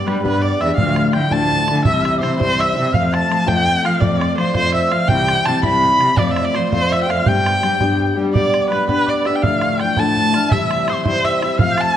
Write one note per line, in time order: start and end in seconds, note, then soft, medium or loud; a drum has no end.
0.00 0.44 D5 medium
0.00 0.33 E5 medium
0.05 0.23 G3 medium
0.05 0.21 G3 loud
0.05 0.23 B3 medium
0.05 0.22 D4 medium
0.05 0.22 G4 medium
0.05 0.22 B4 medium
0.05 0.24 B4 medium
0.05 0.23 B5 medium
0.05 bodhran medium
0.22 0.56 G2 loud
0.22 0.61 G3 medium
0.22 0.61 B3 medium
0.22 0.60 D4 medium
0.22 0.58 G4 medium
0.22 0.43 B4 medium
0.22 2.28 B4 medium
0.22 0.45 B5 medium
0.22 bodhran medium
0.42 0.62 D5 medium
0.42 2.29 D5 medium
0.42 0.62 D6 medium
0.42 bodhran soft
0.59 0.75 E2 loud
0.59 0.78 B3 medium
0.59 0.78 D4 medium
0.59 0.77 G4 medium
0.59 0.76 E5 medium
0.59 0.83 E5 medium
0.59 0.78 E6 medium
0.59 bodhran soft
0.76 1.14 D2 medium
0.76 1.10 D2 loud
0.76 1.14 A2 medium
0.76 1.12 F3 medium
0.76 1.14 A3 medium
0.76 1.14 D4 medium
0.76 1.11 F5 medium
0.76 0.90 F5 medium
0.76 1.15 F6 medium
0.76 bodhran medium
0.90 1.03 F5 medium
0.96 bodhran medium
1.03 1.91 F5 medium
1.13 1.30 D3 medium
1.13 1.31 F3 medium
1.13 1.30 A3 medium
1.13 1.30 D4 medium
1.13 1.29 E4 medium
1.13 2.69 G5 medium
1.13 1.34 G5 medium
1.13 1.34 G6 medium
1.13 bodhran medium
1.31 1.69 D2 medium
1.31 1.64 D2 medium
1.31 1.68 A2 medium
1.31 1.68 F3 medium
1.31 1.68 A3 medium
1.31 1.68 D4 medium
1.31 1.67 E4 medium
1.31 2.76 A5 medium
1.31 1.84 A5 loud
1.31 1.86 A6 medium
1.31 bodhran medium
1.52 bodhran soft
1.68 1.84 D3 loud
1.68 1.85 F3 soft
1.68 1.85 A3 soft
1.68 1.85 D4 medium
1.68 1.85 E4 medium
1.68 bodhran medium
1.84 2.18 C2 medium
1.84 2.22 C3 medium
1.84 2.20 E3 medium
1.84 2.21 G3 medium
1.84 2.23 C4 medium
1.84 2.22 E4 medium
1.84 2.59 E5 medium
1.84 2.19 E5 medium
1.84 2.04 E6 medium
1.84 bodhran medium
2.02 2.20 E6 medium
2.02 2.07 F6 medium
2.02 bodhran medium
2.18 2.39 E3 medium
2.18 2.38 G3 medium
2.18 2.38 C5 medium
2.18 2.39 C5 medium
2.18 2.23 D6 medium
2.18 2.35 E6 medium
2.23 2.38 C3 medium
2.23 2.39 C4 medium
2.23 2.38 E4 medium
2.23 bodhran medium
2.35 2.74 E4 medium
2.35 4.36 C5 medium
2.35 2.41 B5 medium
2.39 2.73 C2 medium
2.39 2.77 C3 medium
2.39 2.76 E3 medium
2.39 2.76 G3 medium
2.39 2.76 C4 medium
2.39 2.62 C5 loud
2.39 2.61 C6 medium
2.39 bodhran medium
2.59 3.00 E5 loud
2.59 2.95 E5 loud
2.59 2.94 E6 loud
2.59 bodhran soft
2.75 2.92 C3 loud
2.75 2.93 G3 soft
2.75 2.94 C4 soft
2.75 2.93 E4 medium
2.93 3.26 F2 loud
2.93 3.28 F3 medium
2.93 3.29 A3 medium
2.93 3.30 C4 medium
2.93 3.30 F4 medium
2.93 3.83 F5 loud
2.93 3.15 F5 medium
2.93 3.14 F6 medium
2.93 bodhran medium
3.13 4.58 A5 medium
3.13 3.49 A5 loud
3.13 3.41 A6 loud
3.13 bodhran medium
3.29 3.46 F3 medium
3.29 3.46 A3 medium
3.29 3.46 C4 medium
3.29 3.45 F4 medium
3.29 bodhran medium
3.41 3.50 A6 medium
3.46 3.80 F2 loud
3.46 3.84 F3 medium
3.46 3.84 A3 medium
3.46 3.85 C4 medium
3.46 3.82 F4 medium
3.46 3.88 G5 loud
3.46 5.03 G5 loud
3.46 3.87 G6 medium
3.46 bodhran loud
3.67 bodhran soft
3.83 3.99 F3 loud
3.83 4.00 A3 soft
3.83 4.01 C4 medium
3.83 4.01 F4 medium
3.83 4.80 F5 medium
3.83 4.02 F5 loud
3.83 4.01 F6 medium
3.83 bodhran medium
4.00 4.33 F2 loud
4.00 4.36 F3 medium
4.00 4.37 A3 medium
4.00 4.39 C4 medium
4.00 4.39 F4 medium
4.00 4.19 D5 medium
4.00 4.37 D5 medium
4.00 4.36 D6 medium
4.00 bodhran medium
4.20 6.04 D5 medium
4.20 bodhran medium
4.37 4.55 F3 medium
4.37 4.53 F3 medium
4.37 4.55 A3 medium
4.37 4.55 C4 medium
4.37 4.54 F4 medium
4.37 4.54 C5 medium
4.37 4.55 C6 medium
4.37 bodhran medium
4.54 4.88 F2 loud
4.54 4.93 F3 medium
4.54 4.93 A3 medium
4.54 4.93 C4 medium
4.54 4.91 F4 medium
4.54 5.69 C5 medium
4.54 4.74 C5 loud
4.54 4.73 C6 medium
4.54 bodhran medium
4.74 4.97 E5 medium
4.74 4.93 E5 medium
4.74 4.95 E6 loud
4.74 bodhran soft
4.91 5.07 F3 loud
4.91 5.10 A3 soft
4.91 5.10 C4 soft
4.91 5.10 F4 medium
4.91 5.10 F5 loud
4.91 6.58 F5 medium
4.91 5.11 F6 medium
4.91 bodhran medium
5.07 5.41 C2 loud
5.07 5.47 C3 medium
5.07 5.45 E3 medium
5.07 5.46 G3 medium
5.07 6.63 G5 loud
5.07 5.47 G5 loud
5.07 5.50 G6 medium
5.07 bodhran medium
5.12 5.47 C4 medium
5.12 5.48 E4 medium
5.28 bodhran medium
5.45 5.61 C3 medium
5.45 5.64 E3 medium
5.45 5.64 G3 medium
5.45 5.64 C4 medium
5.45 5.63 E4 medium
5.45 6.90 A5 medium
5.45 5.63 A5 loud
5.45 5.68 A6 medium
5.45 bodhran medium
5.63 5.96 C2 medium
5.63 6.02 C3 medium
5.63 6.02 E3 medium
5.63 6.01 G3 medium
5.63 6.01 C4 medium
5.63 6.00 E4 medium
5.63 6.78 B5 loud
5.63 6.20 B5 loud
5.63 6.18 B6 medium
5.63 bodhran medium
5.84 bodhran soft
6.00 6.15 C3 loud
6.00 6.18 G3 soft
6.00 6.17 C4 medium
6.00 6.18 E4 medium
6.00 bodhran medium
6.16 6.50 F2 loud
6.16 6.54 F3 medium
6.16 6.55 A3 medium
6.16 6.55 C4 medium
6.16 6.55 F4 medium
6.16 6.42 D5 loud
6.16 6.33 D5 loud
6.16 6.30 D6 medium
6.16 bodhran medium
6.31 6.46 E5 loud
6.36 bodhran medium
6.43 8.27 D5 medium
6.43 6.57 D5 loud
6.54 6.70 F3 medium
6.54 6.73 F3 medium
6.54 6.72 A3 medium
6.54 6.72 C4 medium
6.54 6.71 F4 medium
6.54 6.72 C5 medium
6.54 6.71 C6 medium
6.54 bodhran medium
6.72 7.04 F2 medium
6.72 7.10 F3 medium
6.72 7.08 A3 medium
6.72 7.09 C4 medium
6.72 7.06 F4 medium
6.72 8.70 C5 medium
6.72 6.94 C5 loud
6.72 6.95 C6 medium
6.72 bodhran medium
6.91 7.15 E5 loud
6.91 7.02 E5 loud
6.91 7.08 E6 medium
6.91 bodhran soft
7.03 7.11 G5 medium
7.07 7.24 F2 loud
7.07 7.27 A3 medium
7.07 7.26 C4 soft
7.07 7.26 F4 medium
7.07 8.76 F5 medium
7.07 7.29 F5 loud
7.07 7.28 F6 medium
7.07 bodhran medium
7.26 7.58 G2 loud
7.26 7.61 G3 medium
7.26 7.62 B3 medium
7.26 7.64 D4 medium
7.26 7.64 G4 medium
7.26 8.83 G5 medium
7.26 8.18 G5 loud
7.26 8.17 G6 medium
7.26 bodhran loud
7.46 bodhran medium
7.62 7.80 G3 medium
7.62 7.78 G3 medium
7.62 7.80 B3 medium
7.62 7.80 D4 medium
7.62 7.79 G4 medium
7.62 bodhran medium
7.80 8.12 G2 medium
7.80 8.18 G3 medium
7.80 8.18 B3 medium
7.80 8.17 D4 medium
7.80 8.15 G4 medium
7.80 bodhran medium
8.00 bodhran soft
8.16 8.33 G3 medium
8.16 8.34 B3 medium
8.16 8.34 D4 medium
8.16 8.34 G4 medium
8.34 8.69 G3 medium
8.34 8.70 B3 medium
8.34 8.71 D4 medium
8.34 8.71 G4 loud
8.34 8.68 D5 medium
8.34 9.08 D5 medium
8.34 8.72 D6 medium
8.34 bodhran medium
8.54 bodhran medium
8.70 8.87 G3 medium
8.70 8.87 B3 medium
8.70 8.86 D4 medium
8.70 8.86 G4 medium
8.70 8.87 B4 medium
8.70 8.88 B4 medium
8.70 8.88 B5 medium
8.70 bodhran medium
8.88 9.25 G3 medium
8.88 9.25 B3 medium
8.88 9.25 D4 medium
8.88 9.24 G4 medium
8.88 10.94 B4 medium
8.88 9.10 B4 loud
8.88 9.08 B5 medium
8.88 bodhran medium
9.07 10.93 D5 medium
9.07 9.28 D5 medium
9.07 9.27 D6 medium
9.07 bodhran soft
9.25 9.44 B3 soft
9.25 9.43 D4 medium
9.25 9.43 G4 medium
9.25 9.48 E5 medium
9.25 9.37 E5 medium
9.25 9.45 E6 medium
9.25 bodhran soft
9.35 9.44 G5 medium
9.42 9.80 D2 medium
9.42 9.80 A2 medium
9.42 9.79 F3 medium
9.42 9.80 A3 medium
9.42 9.80 D4 medium
9.42 9.61 F5 medium
9.42 9.82 F5 medium
9.42 9.80 F6 medium
9.42 bodhran medium
9.61 10.55 F5 medium
9.61 bodhran medium
9.77 9.97 F3 medium
9.77 9.97 A3 medium
9.77 11.33 G5 medium
9.77 10.01 G5 loud
9.77 10.00 G6 medium
9.77 bodhran medium
9.82 9.97 D4 medium
9.82 9.96 E4 medium
9.97 10.35 D2 medium
9.97 10.35 A2 medium
9.97 10.34 F3 medium
9.97 10.34 A3 medium
9.97 10.33 D4 medium
9.97 10.32 E4 medium
9.97 11.42 A5 medium
9.97 10.53 A5 loud
9.97 10.35 A6 loud
9.97 bodhran medium
10.17 bodhran soft
10.33 10.51 F3 medium
10.33 10.51 A3 soft
10.33 10.51 D4 medium
10.33 10.51 E4 soft
10.33 10.55 F6 medium
10.33 bodhran medium
10.49 10.88 C3 medium
10.49 10.86 E3 medium
10.49 10.88 G3 medium
10.49 10.89 C4 medium
10.49 10.89 E4 loud
10.49 11.24 E5 loud
10.49 10.91 E5 loud
10.49 bodhran medium
10.53 10.88 E6 medium
10.71 bodhran medium
10.87 11.05 E3 medium
10.87 11.06 G3 medium
10.87 11.05 C4 medium
10.87 11.04 E4 medium
10.87 11.05 C5 medium
10.87 11.05 C6 medium
10.87 bodhran medium
11.04 11.43 C3 medium
11.04 11.43 E3 medium
11.04 11.43 G3 medium
11.04 11.43 C4 medium
11.04 11.41 E4 medium
11.04 11.97 C5 medium
11.04 11.26 C5 loud
11.04 11.27 C6 medium
11.04 bodhran medium
11.24 11.41 E5 loud
11.24 11.60 E5 medium
11.24 11.42 E6 medium
11.24 bodhran soft
11.41 11.60 G3 medium
11.41 11.60 C4 medium
11.41 11.60 E4 medium
11.41 11.65 E5 medium
11.41 11.60 E6 medium
11.41 bodhran medium
11.59 11.95 F3 medium
11.59 11.96 A3 medium
11.59 11.97 C4 medium
11.59 11.97 F4 medium
11.59 11.97 F5 loud
11.59 11.82 F5 loud
11.59 11.70 F6 medium
11.59 bodhran loud
11.71 11.78 G6 medium
11.77 11.97 A5 medium
11.77 11.97 A5 loud
11.77 11.97 A6 loud
11.77 bodhran medium